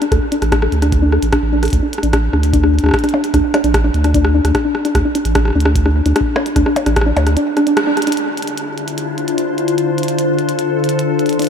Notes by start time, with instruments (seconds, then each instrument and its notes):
0.01 synth arpeggio sound D4, closed hi-hat
0.12 sub bass D2, synth arpeggio sound A4, kick, cross-stick, closed hi-hat
0.32 synth arpeggio sound D4, closed hi-hat
0.42 sub bass A1, cross-stick, closed hi-hat
0.52 synth arpeggio sound D4, kick, cross-stick, closed hi-hat
0.62 synth arpeggio sound A4, cross-stick
0.72 sub bass D2, closed hi-hat
0.82 synth arpeggio sound D4, cross-stick, closed hi-hat
0.92 kick, closed hi-hat
1.02 synth arpeggio sound D4
1.12 synth arpeggio sound A4, cross-stick
1.22 sub bass A1, closed hi-hat
1.32 synth arpeggio sound D4, kick, cross-stick, closed hi-hat
1.42 sub bass A1
1.52 synth arpeggio sound D4
1.63 synth arpeggio sound A4, cross-stick, closed hi-hat
1.65 closed hi-hat
1.68 closed hi-hat
1.70 sub bass D2, kick, closed hi-hat
1.73 closed hi-hat
1.83 synth arpeggio sound D4
1.93 closed hi-hat
1.98 cross-stick
2.03 sub bass A1, synth arpeggio sound D4, closed hi-hat
2.13 synth arpeggio sound D4, kick, cross-stick, closed hi-hat
2.33 sub bass D2, synth arpeggio sound D4, cross-stick
2.43 closed hi-hat
2.53 synth arpeggio sound D4, kick, closed hi-hat
2.63 synth arpeggio sound D4, cross-stick
2.79 closed hi-hat
2.83 sub bass D2, synth arpeggio sound D4, cross-stick
2.86 cross-stick
2.89 cross-stick
2.91 kick, cross-stick
2.94 cross-stick, closed hi-hat
2.99 closed hi-hat
3.03 synth arpeggio sound D4, cross-stick, closed hi-hat
3.09 closed hi-hat
3.14 synth arpeggio sound D4, percussion blips
3.24 closed hi-hat
3.34 sub bass D2, synth arpeggio sound D4, kick, cross-stick, closed hi-hat
3.54 synth arpeggio sound D4, cross-stick, closed hi-hat, percussion blips
3.64 sub bass A1, synth arpeggio sound D4, closed hi-hat
3.74 kick, cross-stick, closed hi-hat
3.84 synth arpeggio sound D4
3.94 sub bass D2, closed hi-hat
4.04 synth arpeggio sound D4, cross-stick, closed hi-hat
4.14 synth arpeggio sound D4, kick, closed hi-hat
4.25 cross-stick
4.34 synth arpeggio sound D4
4.44 sub bass D2, cross-stick, closed hi-hat
4.55 synth arpeggio sound D4, kick, cross-stick, closed hi-hat
4.65 synth arpeggio sound D4
4.75 cross-stick
4.85 synth arpeggio sound D4, closed hi-hat
4.95 sub bass D2, kick, cross-stick, closed hi-hat
5.05 synth arpeggio sound D4
5.15 synth arpeggio sound D4, closed hi-hat
5.25 sub bass A1, closed hi-hat
5.35 synth arpeggio sound D4, kick, cross-stick, closed hi-hat
5.45 cross-stick
5.48 cross-stick
5.50 cross-stick
5.53 sub bass D2, synth arpeggio sound D4, cross-stick
5.60 closed hi-hat
5.65 synth arpeggio sound D4, cross-stick
5.75 kick, closed hi-hat
5.86 synth arpeggio sound D4, cross-stick
6.06 sub bass D2, synth arpeggio sound D4, closed hi-hat
6.16 synth arpeggio sound D4, cross-stick, closed hi-hat
6.21 kick
6.36 synth arpeggio sound D4, cross-stick, percussion blips
6.46 closed hi-hat
6.56 sub bass D2, synth arpeggio sound D4, kick, cross-stick, closed hi-hat
6.66 synth arpeggio sound D4, cross-stick
6.76 closed hi-hat, percussion blips
6.86 sub bass A1, synth arpeggio sound D4, cross-stick, closed hi-hat
6.96 kick, cross-stick, closed hi-hat
7.01 cross-stick
7.06 synth arpeggio sound D4
7.16 sub bass D2, synth arpeggio sound D4, closed hi-hat, percussion blips
7.27 cross-stick, closed hi-hat
7.37 synth arpeggio sound D4, closed hi-hat
7.57 synth arpeggio sound D4, cross-stick, closed hi-hat
7.67 synth arpeggio sound D4, closed hi-hat
7.77 cross-stick, closed hi-hat
7.87 synth arpeggio sound D4
7.97 cross-stick, closed hi-hat
8.02 closed hi-hat
8.07 synth arpeggio sound D4, closed hi-hat
8.12 closed hi-hat
8.17 ambient pad D3, closed hi-hat
8.34 ambient pad D4, closed hi-hat
8.39 ambient pad E4 F4, closed hi-hat
8.47 closed hi-hat
8.58 closed hi-hat
8.73 ambient pad C5
8.78 closed hi-hat
8.88 closed hi-hat
8.98 closed hi-hat
9.18 closed hi-hat
9.28 closed hi-hat
9.38 closed hi-hat
9.58 closed hi-hat
9.68 closed hi-hat
9.78 closed hi-hat
9.98 closed hi-hat
10.03 closed hi-hat
10.08 ambient pad A4, closed hi-hat
10.19 closed hi-hat
10.39 closed hi-hat
10.49 closed hi-hat
10.59 closed hi-hat
10.84 closed hi-hat
10.89 closed hi-hat
10.99 closed hi-hat
11.19 closed hi-hat
11.26 closed hi-hat
11.29 closed hi-hat
11.33 closed hi-hat
11.39 synth arpeggio sound D4, closed hi-hat
11.42 closed hi-hat
11.44 closed hi-hat